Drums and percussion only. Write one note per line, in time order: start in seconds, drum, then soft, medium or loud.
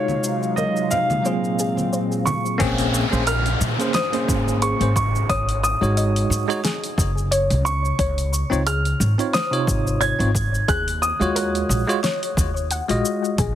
0.08 high conga medium
0.08 shaker soft
0.24 shaker medium
0.43 shaker soft
0.57 high conga medium
0.57 shaker soft
0.76 shaker soft
0.91 low conga medium
0.91 shaker medium
1.10 high conga medium
1.10 shaker soft
1.25 shaker soft
1.44 shaker soft
1.59 shaker medium
1.77 high conga soft
1.77 shaker soft
1.93 shaker soft
2.12 shaker soft
2.26 high conga medium
2.26 low conga medium
2.26 shaker medium
2.46 shaker soft
2.60 kick loud
2.60 open hi-hat medium
2.60 shaker soft
2.78 open hi-hat soft
2.78 shaker soft
2.94 shaker medium
3.13 shaker soft
3.27 open hi-hat medium
3.27 shaker soft
3.46 open hi-hat soft
3.46 shaker soft
3.61 shaker medium
3.80 open hi-hat soft
3.80 shaker soft
3.94 snare medium
3.94 open hi-hat medium
3.94 shaker soft
4.13 open hi-hat soft
4.13 shaker soft
4.28 kick loud
4.28 shaker medium
4.48 shaker soft
4.62 open hi-hat medium
4.62 shaker soft
4.81 open hi-hat soft
4.81 shaker soft
4.96 kick loud
4.96 shaker medium
5.16 shaker soft
5.29 kick loud
5.29 open hi-hat medium
5.29 shaker soft
5.49 open hi-hat medium
5.49 shaker soft
5.64 shaker medium
5.83 shaker soft
5.97 open hi-hat medium
5.97 shaker soft
6.16 open hi-hat soft
6.16 shaker soft
6.32 shaker medium
6.50 open hi-hat soft
6.50 shaker soft
6.65 snare medium
6.65 open hi-hat medium
6.65 shaker soft
6.84 open hi-hat soft
6.84 shaker soft
6.98 kick loud
6.98 shaker medium
7.18 shaker soft
7.32 open hi-hat medium
7.32 shaker soft
7.50 open hi-hat soft
7.50 shaker soft
7.66 shaker medium
7.85 shaker soft
7.99 kick loud
7.99 open hi-hat medium
7.99 shaker soft
8.18 open hi-hat soft
8.18 shaker soft
8.34 shaker medium
8.53 shaker soft
8.67 open hi-hat medium
8.67 shaker soft
8.85 open hi-hat soft
8.85 shaker soft
9.01 shaker medium
9.19 open hi-hat soft
9.19 shaker soft
9.34 snare medium
9.34 open hi-hat medium
9.34 shaker soft
9.53 open hi-hat soft
9.53 shaker soft
9.67 kick loud
9.67 shaker medium
9.87 shaker soft
10.01 open hi-hat medium
10.01 shaker soft
10.20 open hi-hat soft
10.20 shaker soft
10.35 kick loud
10.35 shaker medium
10.55 shaker soft
10.68 kick loud
10.68 open hi-hat medium
10.68 shaker soft
10.88 open hi-hat soft
10.88 shaker soft
11.03 shaker medium
11.21 open hi-hat soft
11.21 shaker soft
11.36 open hi-hat medium
11.36 shaker soft
11.55 open hi-hat soft
11.55 shaker soft
11.71 shaker medium
11.89 open hi-hat soft
11.89 shaker soft
12.04 snare medium
12.04 open hi-hat medium
12.04 shaker soft
12.23 open hi-hat soft
12.23 shaker soft
12.37 kick loud
12.37 shaker medium
12.57 shaker soft
12.71 open hi-hat medium
12.71 shaker soft
12.89 open hi-hat soft
12.89 shaker soft
13.05 shaker medium
13.25 shaker soft
13.38 kick loud
13.38 open hi-hat medium
13.38 shaker soft